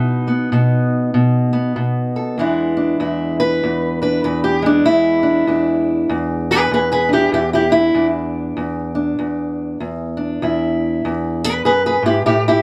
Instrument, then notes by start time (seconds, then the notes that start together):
steel-string acoustic guitar
Already playing: B2 D#4
0.28 B3
0.52 B2 B3
1.14 B2
1.53 B3
1.76 B2
2.16 A4
2.38 E2 E3 G#3 D4 E4
2.77 D4
3.00 E2 E4
3.40 B4
3.63 E2
4.02 D4 B4
4.24 E2 B4
4.44 G4
4.62 G#3 D4
4.86 E2 E4
5.23 D4
5.47 E2 D4
6.09 E2
6.51 G#4 B4
6.71 E2 G#4 B4
6.92 G#4 B4
7.09 D4 E4
7.13 G4
7.32 E2 E4 G4
7.53 E4 G4
7.70 D4 E4
7.94 E2 D4
8.57 E2
8.95 D4
9.19 E2
9.80 E2
10.17 D4
10.42 E2 E4
11.05 E2
11.44 G#4 B4
11.65 F#2 G#4 B4
11.86 G#4 B4
12.02 G#2 E4 G4
12.26 A2 E4 G4
12.48 E4 G4